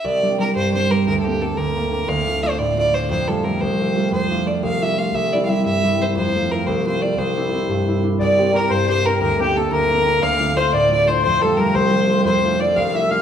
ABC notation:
X:1
M:6/8
L:1/16
Q:3/8=118
K:Cmix
V:1 name="Accordion"
z12 | z12 | z12 | z12 |
z12 | z12 | z12 | z12 |
d4 B2 c2 c2 B2 | B2 G2 A2 B6 | f4 c2 d4 c2 | c2 A2 B2 c6 |
c4 d2 f2 e2 f2 |]
V:2 name="Fiddle"
d4 B2 c2 c2 B2 | B3/2 A/2 G2 A2 B6 | f4 c2 d2 d2 c2 | c2 A2 B2 c6 |
c4 d2 f2 e2 f2 | e2 d3/2 f/2 e2 e4 c2 | c4 B2 c2 c2 d2 | c8- c2 z2 |
d4 B2 c2 c2 B2 | B2 G2 A2 B6 | f4 c2 d2 d2 c2 | c2 A2 B2 c6 |
c4 d2 f2 e2 f2 |]
V:3 name="Harp"
C,,2 [G,CD]2 [G,CD]2 G,,2 [G,CD]2 [G,CD]2 | D,,2 [B,CD]2 [B,CD]2 D,,2 [B,CD]2 [B,CD]2 | D,,2 [A,DF]2 [A,DF]2 A,,2 [A,DF]2 [A,DF]2 | F,,2 [G,A,F]2 [G,A,F]2 C,,2 [G,A,F]2 [G,A,F]2 |
F,,2 [A,DF]2 [A,DF]2 C,,2 [A,DF]2 [A,DF]2 | C,,2 [G,CE]2 [G,CE]2 G,,2 [G,CE]2 [G,CE]2 | F,,2 [A,CF]2 [A,CF]2 C,,2 [A,CF]2 [A,CF]2 | C,,2 [CDE]2 [CDE]2 G,,2 [CDE]2 [CDE]2 |
C,,2 [CDG]2 [CDG]2 G,,2 [CDG]2 [CDG]2 | D,,2 [B,CD]2 [B,CD]2 D,,2 [B,CD]2 [B,CD]2 | D,,2 [A,DF]2 [A,DF]2 A,,2 [A,DF]2 [A,DF]2 | F,,2 [G,A,F]2 [G,A,F]2 C,,2 [G,A,F]2 [G,A,F]2 |
F,,2 [A,DF]2 [A,DF]2 C,,2 [A,DF]2 [A,DF]2 |]